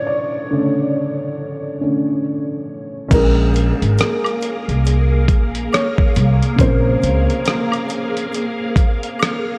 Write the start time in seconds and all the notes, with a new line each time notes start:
Already playing: C#3 D3 A3 C#5 D5
0.07 D5
0.51 C#3 D3 A3
1.81 D3 A3 C#4
3.09 A#1 A#3 C#4 G#4 A#4 F5, kick, closed hi-hat, crash, shaker
3.13 G#3 G#4 A#4
3.54 closed hi-hat, shaker
3.82 G#1, closed hi-hat
3.98 cross-stick, closed hi-hat, shaker
4.24 closed hi-hat, high woodblock
4.41 closed hi-hat, shaker
4.68 C2, closed hi-hat
4.85 closed hi-hat, shaker
5.28 A#1, kick, closed hi-hat, shaker
5.55 closed hi-hat
5.73 C#5, cross-stick, closed hi-hat, high woodblock, shaker
5.98 kick
6.15 C2, closed hi-hat, shaker
6.43 closed hi-hat
6.56 A#1 C#3 A#3, kick, shaker
6.60 C4 A#4 C5, closed hi-hat
7.02 C#2, closed hi-hat, shaker
7.30 closed hi-hat
7.45 cross-stick, closed hi-hat, shaker
7.72 closed hi-hat, high woodblock
7.88 closed hi-hat, shaker
8.17 closed hi-hat
8.32 closed hi-hat, shaker
8.76 kick, closed hi-hat, shaker
9.03 closed hi-hat
9.19 cross-stick, closed hi-hat, high woodblock, shaker